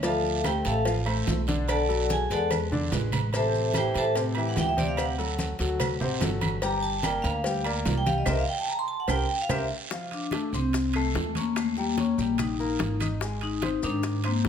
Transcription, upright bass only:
0.00 0.60 D2 loud
0.65 1.23 A1 medium
1.27 2.24 B1 loud
2.30 2.88 E2 loud
2.92 3.89 A1 medium
3.95 4.53 A2 loud
4.57 5.53 D2 medium
5.59 5.98 D2 medium
6.01 6.20 A1 medium
6.21 7.18 G1 medium
7.24 7.82 D2 loud
7.85 8.24 C2 loud
8.27 8.42 C2 loud
9.08 9.24 C2 loud
9.49 9.65 C2 loud
10.52 11.11 C2 medium
11.15 12.12 D#2 medium
12.18 12.76 A#1 loud
12.80 13.77 G#1 medium
13.83 14.41 G#2 loud
14.45 14.48 B1 medium

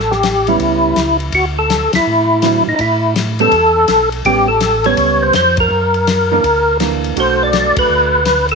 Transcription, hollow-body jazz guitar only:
0.48 0.95 G3 medium
0.48 0.95 B3 medium
0.48 0.96 C#4 medium
2.44 2.65 D3 medium
2.44 2.65 F#3 medium
2.44 2.65 C4 medium
2.44 2.65 E4 medium
3.40 3.51 G3 medium
3.40 3.52 B3 medium
3.40 3.52 C#4 medium
4.26 4.47 G3 medium
4.26 4.47 B3 medium
4.26 4.48 C#4 medium
4.86 5.32 G3 medium
4.86 5.33 B3 medium
4.86 5.33 C#4 medium
6.32 6.43 E3 medium
6.32 6.44 A#3 medium
6.32 6.44 D4 medium
6.80 7.17 E3 soft
6.80 7.16 A#3 medium
6.80 7.16 D4 medium
7.16 8.18 A3 medium
7.16 8.19 D4 medium
7.16 8.19 F#4 medium

